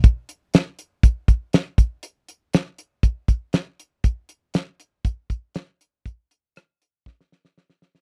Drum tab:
HH |x-x-x-x-x-x-x-x-|x-x-x-x-x-x-x-x-|x-x-x-x-x-x-x-x-|x-x-x-x---------|
SD |----o-------o---|----o-------o---|----o-------o---|----r---oooooooo|
BD |o-------o-o---o-|--------o-o-----|o-------o-o-----|o-------o-------|